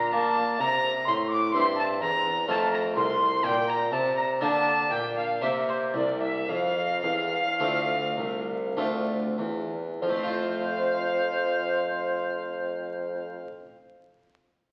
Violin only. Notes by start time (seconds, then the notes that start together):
Already playing: A#5
0.13 A5
0.61 A#5
1.08 C6
1.31 D6
1.54 C6
1.79 A5
2.02 A#5
2.50 A5
2.74 A#5
2.97 C6
3.45 G5
3.69 A#5
3.92 A5
4.17 A#5
4.41 A5
4.91 G5
5.16 F5
5.42 E5
5.68 C5
5.95 D5
6.23 E5
6.49 F5
10.03 F5